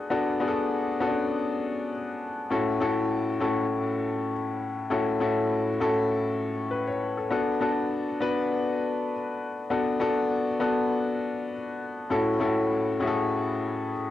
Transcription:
grand piano
Already playing: B3 D4 F#4 G#4 A4
0.10 B3 D4 F#4 A4
0.40 B3 D4 F#4 G#4
0.48 A4
1.00 B3 C#4 F#4 A4
1.07 D4
2.50 A2 C#4 E4 F#4 A4
2.80 A2 C#4 E4 F#4 A4
3.40 A2 C#4 E4 F#4 A4
4.90 A2 C#4 E4 F#4 A4
5.20 A2 C#4 E4 F#4 A4
5.80 A2 C#4 E4 F#4 A4
6.71 B4
6.87 C#5
7.17 A4
7.30 B3 D4 F#4 A4
7.60 B3 D4 F#4 A4
8.20 B3 D4 F#4 B4
9.70 B3 D4 F#4 A4
10.00 B3 D4 F#4 A4
10.60 B3 D4 F#4 A4
12.10 A2 C#4 E4 F#4 A4
12.40 A2 C#4 E4 F#4 A4
13.00 A2 C#4 E4 F#4 G#4
13.07 A4

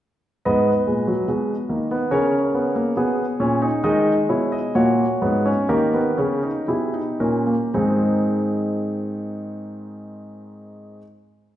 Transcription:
grand piano
0.45 G#2 B3 B4 D#5
0.87 A#2 G#3
1.07 F#3
1.28 B2 G#3
1.69 D#3 A#3
1.91 B3
2.11 C#3 C#4 A#4 C#5
2.54 B3
2.76 A#3
2.97 B2 B3 G#4
3.40 A#2 C#4
3.62 D#4
3.84 D#3 G#3 D#4 D#5
4.29 B2 E4 C#5
4.52 D#5
4.75 A#2 A#3 F#4 C#5
5.22 G#2 B3
5.46 C#4
5.69 D#3 A#3 G4 A#4
5.94 B3
6.18 C#3 C#4
6.43 D#4
6.68 B2 E4 G4 G#4
6.93 D#4
7.20 A#2 C#4 A#4
7.47 A#3
7.74 G#2 D#3 G#3 C4 D#4 G#4

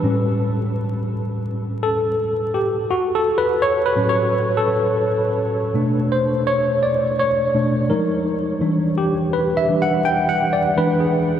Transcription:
tine electric piano
Already playing: B4
0.03 A2 G3 C#4
1.83 A4
2.54 G4
2.91 F#4
3.15 A4
3.38 B4
3.62 C#5
3.85 B4
3.95 A2 F#3 C#4
4.09 C#5
4.57 A4
5.74 B2 A3 D4
6.12 C5
6.47 C#5
6.83 D5
7.19 C#5
7.54 B2 A3 D4
7.90 F3 G#3 D#4 A#4
8.61 E3 G3 D4
8.98 G4
9.33 B4
9.57 E5
9.69 E3 G3 D4
9.82 F#5
10.05 G5
10.29 F#5
10.53 D5
10.77 E3 G#3 D4 B4
11.00 G#4

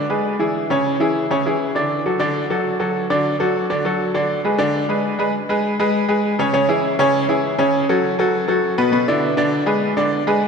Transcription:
upright piano
0.09 G#3 G#4 B4
0.39 E3 E4 G#4
0.70 C#3 C#4 C#5
1.00 E3 E4 G#4
1.30 C#3 C#4 C#5
1.46 E3 E4 G#4
1.75 D3 D4 D5
2.06 F#3 F#4 A4
2.19 D3 D4 D5
2.50 F#3 F#4 A4
2.80 F#3 F#4 A4
3.10 D3 D4 D5
3.40 F#3 F#4 A4
3.70 D3 D4 D5
3.85 F#3 F#4 A4
4.14 D3 D4 D5
4.44 G#3 G#4 B4
4.58 D3 D4 D5
4.89 G#3 G#4 B4
5.19 G#3 G#4 B4
5.49 G#3 G#4 B4
5.79 G#3 G#4 B4
6.08 G#3 G#4 B4
6.39 C#3 C#4 C#5
6.53 C#3 C#4 C#5
6.68 E3 E4 G#4
6.99 C#3 C#4 C#5
7.28 E3 E4 G#4
7.58 C#3 C#4 C#5
7.89 F#3 F#4 A4
8.19 F#3 F#4 A4
8.48 F#3 F#4 A4
8.78 B2 B3 B4
8.92 B2 B3 B4
9.08 D3 D4 E4
9.37 D3 D4 D5
9.66 G#3 G#4 B4
9.97 D3 D4 D5
10.27 G#3 G#4 B4

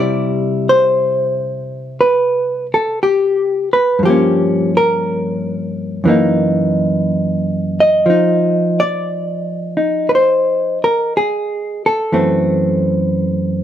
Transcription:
hollow-body jazz guitar
Already playing: C3 G3 E4
0.00 D5
0.69 C5
2.01 B4
2.74 A4
3.03 G4
3.73 B4
3.99 G2 F3
4.05 A#3 G4
4.10 C#4
4.77 A#4
6.04 F#2 E3 A#3
6.09 D#4
7.80 D#5
8.06 F3
8.10 D#4
8.80 D5
9.77 D#4
10.09 B4
10.15 C5
10.84 A#4
11.17 G#4
11.86 A4
12.12 F#2 E3 A3 C4

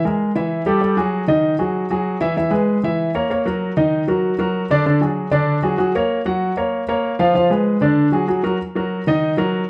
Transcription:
grand piano
0.05 G#3 G#4 A#4
0.35 E3 E4 E5
0.66 G3 G4 A4
0.81 G3 G4 A4
0.97 F#3 F#4 G#4
1.28 D#3 D#4 D#5
1.59 F#3 F#4 G#4
1.90 F#3 F#4 G#4
2.21 E3 E4 E5
2.37 E3 E4 E5
2.51 G#3 G#4 B4
2.83 E3 E4 E5
3.15 A#3 A#4 C#5
3.30 A#3 A#4 C#5
3.46 F#3 F#4 A#4
3.77 D#3 D#4 D#5
4.08 F#3 F#4 A#4
4.39 F#3 F#4 A#4
4.70 D3 D4 D5
4.86 D3 D4 D5
5.01 F#3 F#4 G#4
5.31 D3 D4 D5
5.63 F#3 F#4 G#4
5.78 F#3 F#4 G#4
5.95 A#3 A#4 C#5
6.26 F#3 F#4 F#5
6.57 A#3 A#4 C#5
6.89 A#3 A#4 C#5
7.19 F3 F4 F5
7.35 F3 F4 F5
7.50 G#3 G#4 B4
7.81 D3 D4 D5
8.12 F#3 F#4 G#4
8.28 F#3 F#4 G#4
8.43 F#3 F#4 A#4
8.75 F#3 F#4 A#4
9.07 D#3 D#4 D#5
9.37 F#3 F#4 A#4

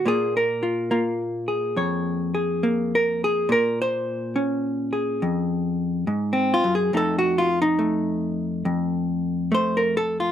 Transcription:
hollow-body jazz guitar
Already playing: C#5
0.05 A#2 A#3 F4 G#4
0.37 A#4
0.63 F4
0.91 A#3 F4
1.48 G#4
1.76 F2 C#5
2.35 G#4
2.63 A#3
2.95 A#4
3.24 G#4
3.49 A#2 A#4
3.82 C5
4.36 C#4
4.93 G#4
5.22 F2
6.07 G#2
6.33 C4
6.54 F4
6.64 F#2
6.75 G#4
6.93 F2 A3 D#4 A4
7.18 F#4
7.38 F4
7.62 D#4
7.79 A3
8.65 F2
9.52 A3 C5
9.77 A#4
9.97 A4
10.20 F4

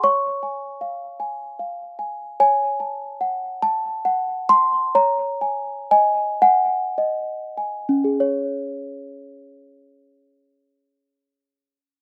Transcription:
celesta
0.04 C#5 C#6
0.43 G#5
0.81 F5
1.20 G#5
1.59 F5
1.99 G#5
2.40 C#5 G#5
2.80 A5
3.21 F#5
3.62 A5
4.05 F#5
4.49 A5 C6
4.95 C#5 A#5
5.41 G#5
5.91 D#5 G#5
6.42 F#5 G#5
6.98 D#5
7.57 G#5
7.89 C#4
8.04 G#4
8.20 C#5

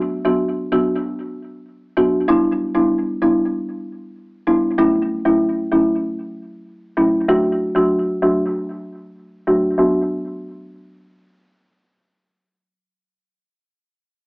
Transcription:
marimba
0.25 F#3 B3 D4 F#4
0.72 F#3 B3 D4 F#4
1.97 F#3 B3 D4 F#4
2.28 G3 B3 D4 E4
2.75 G3 B3 D4 E4
3.22 G3 B3 D4 E4
4.47 G3 B3 D4 E4
4.78 F#3 A3 C#4 E4
5.25 F#3 A3 C#4 E4
5.72 F#3 A3 C#4 E4
6.97 F#3 A3 C#4 E4
7.28 F#3 A3 D4 F#4
7.75 F#3 A3 D4 F#4
8.22 F#3 A3 D4 F#4
9.47 F#3 A3 D4 F#4
9.78 F#3 B3 D4 F#4

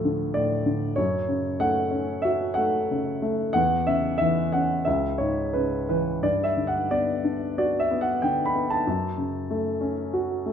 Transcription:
grand piano
Already playing: D2 A2 D3 F3 A3 F5
0.05 D3
0.34 A2 D5
0.66 D3
0.96 F#2 C#5
1.28 C#3
1.60 A3 F#5
1.91 C#4
2.22 F#4 E5
2.54 A3 F#5
2.91 C#3
3.22 A3
3.53 E2 F#5
3.87 C#3 E5
4.18 E3 E5
4.53 C#4 F#5
4.85 C#2 E5
5.18 G#2 C#5
5.53 C#3 B4
5.89 E3 B4
6.23 G2 D5
6.44 E5
6.57 D3
6.67 F#5
6.91 B3 D5
7.24 D4
7.58 F#4 D5
7.80 E5
7.91 B3
8.01 F#5
8.22 D3 G5
8.45 B5
8.55 B3
8.70 A5
8.87 F#2
9.18 C#3
9.51 A3
9.81 C#4
10.14 F#4
10.46 A3

